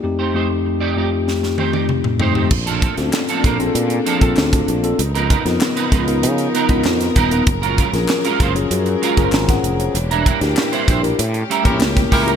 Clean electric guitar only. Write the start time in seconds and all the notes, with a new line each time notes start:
0.03 muted clean electric guitar stroke
0.19 A3 D#4 G4 C5
0.34 A3 D#4 G4 C5
0.65 muted clean electric guitar stroke
0.80 A3 D#4 G4 D5
0.96 A3 D#4 G4 D5
1.12 muted clean electric guitar stroke
1.27 muted clean electric guitar stroke
1.43 muted clean electric guitar stroke
1.58 A3 D#4 G4 C5
1.74 A3 D#4 G4 D5
1.89 muted clean electric guitar stroke
2.04 muted clean electric guitar stroke
2.19 A3 D#4 G4 C5
2.35 A3 D#4 G4 C5
2.51 muted clean electric guitar stroke
2.67 F3 A#3 D4 A4
2.82 F3 A#3 D4 A4
2.98 muted clean electric guitar stroke
3.14 muted clean electric guitar stroke
3.29 F3 A#3 D4 A4
3.45 F3 A#3 D4 A#4
3.60 muted clean electric guitar stroke
3.75 muted clean electric guitar stroke
3.91 muted clean electric guitar stroke
4.06 F3 A#3 D4 A4
4.22 F3 A#3 D4 A4
4.37 muted clean electric guitar stroke
4.53 muted clean electric guitar stroke
4.84 muted clean electric guitar stroke
4.99 muted clean electric guitar stroke
5.15 F3 B3 D#4 A#4
5.30 F3 B3 D#4 A#4
5.45 muted clean electric guitar stroke
5.61 muted clean electric guitar stroke
5.76 F3 B3 D#4 B4
5.92 F3 B3 D#4 B4
6.07 muted clean electric guitar stroke
6.23 muted clean electric guitar stroke
6.39 muted clean electric guitar stroke
6.54 F3 B3 D#4 A#4
6.70 F3 B3 D#4 B4
6.85 muted clean electric guitar stroke
7.01 muted clean electric guitar stroke
7.15 F3 B3 D#4 A#4
7.31 F3 B3 D#4 A#4
7.48 muted clean electric guitar stroke
7.62 G#3 C#4 F4 A#4
7.78 G#3 C#4 F4 A#4
7.93 muted clean electric guitar stroke
8.09 muted clean electric guitar stroke
8.25 G#3 C#4 F4 A#4
8.40 G#3 C#4 F4 C5
8.56 muted clean electric guitar stroke
8.71 muted clean electric guitar stroke
8.87 muted clean electric guitar stroke
9.02 G#3 C#4 F4 A#4
9.17 G#3 C#4 F4 A#4
9.49 muted clean electric guitar stroke
9.80 muted clean electric guitar stroke
9.95 muted clean electric guitar stroke
10.11 G3 D4 E4 A#4
10.26 G3 D4 E4 A#4
10.43 muted clean electric guitar stroke
10.58 muted clean electric guitar stroke
10.72 G3 D4 E4 C5
10.88 G3 D4 E4 C5
11.19 muted clean electric guitar stroke
11.34 muted clean electric guitar stroke
11.50 G3 C#4 E4 A#4
11.65 G3 C#4 E4 C#5
11.81 muted clean electric guitar stroke
11.96 muted clean electric guitar stroke
12.11 G3 C#4 E4 A#4
12.27 G3 C#4 E4 A#4